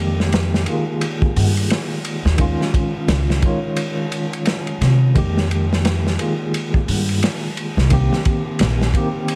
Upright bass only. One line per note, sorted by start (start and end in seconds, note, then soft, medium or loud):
0.00 0.64 F2 loud
1.36 1.67 G2 loud
2.25 2.55 D#2 loud
3.08 3.39 C#2 loud
4.81 5.12 C3 loud
5.16 6.16 F2 medium
6.88 7.19 G2 medium
7.77 8.07 C2 loud
8.60 8.91 A#1 loud